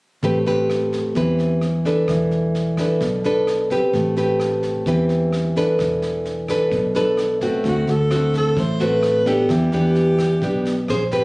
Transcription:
0.23 fingered electric bass A1, nylon-string guitar A3 C4 G4 B4, kick, snare
0.46 nylon-string guitar C4 G4 B4, snare
0.70 cross-stick, snare
0.92 kick, snare
1.15 fingered electric bass E2, nylon-string guitar E3 C4 G4 B4, kick, snare
1.39 snare
1.61 cross-stick, snare
1.85 nylon-string guitar D4 A4 B4, kick, snare
2.08 fingered electric bass E1, nylon-string guitar E3, kick, cross-stick, snare
2.31 snare
2.55 snare
2.77 nylon-string guitar D4 A4 B4, kick, cross-stick, snare
3.00 fingered electric bass B1, nylon-string guitar B2, kick, snare
3.24 nylon-string guitar D4 A4 B4, snare
3.47 cross-stick, snare
3.70 nylon-string guitar C4 G4 B4, kick, snare
3.93 fingered electric bass A1, nylon-string guitar A3, kick, snare
4.16 nylon-string guitar C4 G4 B4, snare
4.40 cross-stick, snare
4.63 kick, snare
4.86 fingered electric bass E2, nylon-string guitar E3 C4 G4 B4, kick, snare
5.09 snare
5.33 cross-stick, snare
5.56 nylon-string guitar D4 A4 B4, kick, snare
5.79 fingered electric bass E1, nylon-string guitar E3, kick, cross-stick, snare
6.02 snare
6.25 snare
6.48 nylon-string guitar D4 A4 B4, kick, cross-stick, snare
6.71 fingered electric bass B1, nylon-string guitar B2, kick, snare
6.95 nylon-string guitar D4 A4 B4, snare
7.17 cross-stick, snare
7.41 nylon-string guitar A3 C4 F#4, kick, snare
7.64 fingered electric bass D2, nylon-string guitar D3, kick, snare
7.68 alto saxophone F#4
7.87 fingered electric bass D2, alto saxophone A4, snare
8.11 nylon-string guitar A3 C4 F#4, cross-stick, snare
8.34 alto saxophone A4, kick, snare
8.57 fingered electric bass A1, nylon-string guitar A2, alto saxophone C5, kick, snare
8.80 nylon-string guitar A3 C4 F#4, alto saxophone B4, snare
9.03 cross-stick, snare
9.26 nylon-string guitar B3 D4 G4, alto saxophone A4, kick, snare
9.49 fingered electric bass E2, nylon-string guitar E3, alto saxophone G4, kick, cross-stick, snare
9.72 fingered electric bass E2, nylon-string guitar B3 D4 G4, snare
9.95 snare
10.19 kick, cross-stick, snare
10.42 fingered electric bass B1, nylon-string guitar B2 B3 D4 G4, kick, snare
10.65 snare
10.88 fingered electric bass A#1, nylon-string guitar C#4 G#4 C5, cross-stick, snare
11.11 nylon-string guitar C4 G4 B4, kick, snare

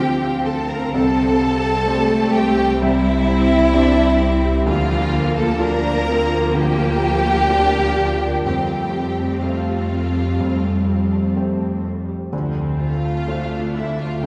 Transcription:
Already playing: double bass section D2, felt piano D2 D3, harp D3 C4 A4 C5 F5, viola section F3 C4, violin section G4 G5
0.00 felt piano F3 F4 C5, cello section C4, harp F6
0.23 harp F5
0.44 violin section A4 A5, harp C5
0.69 violin section A#4 A#5, harp F5
0.92 double bass section C2, felt piano C2 C3, harp C3, viola section G3 C4, violin section A4 A5
1.17 harp C4
1.41 harp C5
1.65 harp G5
1.87 felt piano G3 C4 C5, cello section A3, harp C6
2.11 harp G5
2.33 violin section G4 G5, harp C5
2.59 harp G4
2.80 felt piano C2 C3, cello section G3, harp G3, violin section E4 E5
3.05 harp C4
3.27 cello section C4, harp C5
3.52 harp G5
3.74 felt piano G3 C4 C5, cello section D4, harp C6
3.98 harp G5
4.19 cello section C4, harp C5
4.45 harp G4
4.66 double bass section D2, felt piano D2 D3, harp D3, viola section F3 A#3, cello section A#3, violin section F4 F5
4.91 harp F3
5.13 harp A#4
5.36 violin section A4 A5, harp F5
5.59 felt piano A#3 F4 A#4, cello section D4, violin section A#4 A#5, harp A#5
5.84 harp F5
6.07 cello section C4, harp F4
6.32 harp A#4
6.54 felt piano D2 D3, harp D3, cello section A#3, violin section G4 G5
6.78 harp F3
7.02 harp A#4
7.26 harp F5
7.49 felt piano A#3 F4 A#4, cello section D4, harp A#5
7.73 harp F5
7.98 harp F4
8.22 harp A#4
8.45 felt piano F1 F2, double bass section F2, harp F3, viola section G3 A3, cello section C4, violin section G4 G5
8.70 harp C4
8.95 harp G4
9.18 harp A5
9.42 felt piano A3 G4 C5, violin section F4 F5, harp G5
9.67 harp A5
9.91 harp C5
10.15 harp G4
10.40 felt piano F1 F2, harp G3
10.64 harp C4
10.88 harp G4
11.12 harp A5
11.36 felt piano A3 G4 C5, harp G5
11.61 harp A5
11.84 harp C5
12.09 harp G4
12.32 double bass section D2, felt piano D2 D3, harp D3, viola section F3 C4
12.56 harp C4
12.80 viola section A3, violin section F4 F5, harp F4
13.04 harp A5
13.28 felt piano A3 F4 C5, viola section D4, harp F5
13.52 harp A5
13.75 violin section E4 E5, harp C5
13.99 harp F4, violin section F4 F5
14.22 violin section G4 G5

